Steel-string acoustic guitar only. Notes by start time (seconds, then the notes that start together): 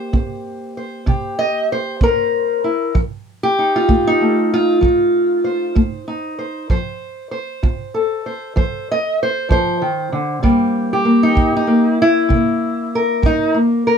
Already playing: A#3 G4 C5
0.13 C4
0.77 C5
1.06 C3 G4
1.39 D#5
1.72 C5
2.01 C4 A#4
2.64 E4
2.95 F3
3.43 G4
3.59 D#4
3.76 F4
3.88 A3
4.07 D#4
4.21 A3
4.54 F4
4.81 F3 D#4
5.44 C5
5.75 A3
6.08 D#4
6.39 C5
6.70 F3 C5
7.31 C5
7.63 F4
7.94 A4
8.26 C5
8.56 F3 C5
8.91 D#5
9.23 C5
9.49 F3 C5
9.82 D#3
10.12 D3
10.43 C3 G3 A#3
10.93 G4
11.05 A#3
11.23 D#4
11.35 G3
11.56 D#4
11.67 A#3
12.02 E4
12.29 C3 A#3
12.95 A#4
13.22 G3 D#4
13.54 A#3
13.87 A#4